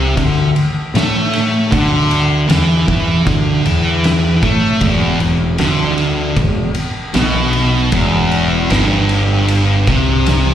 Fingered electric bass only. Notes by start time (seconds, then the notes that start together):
Already playing: C2
0.17 D2
0.94 A2
1.72 D2
2.49 E2
2.88 E2
3.26 D2
3.66 E2
4.42 A2
4.81 E1
5.19 E1
5.59 D2
6.36 E1
7.15 B1
7.92 E1
8.71 G1
9.87 C2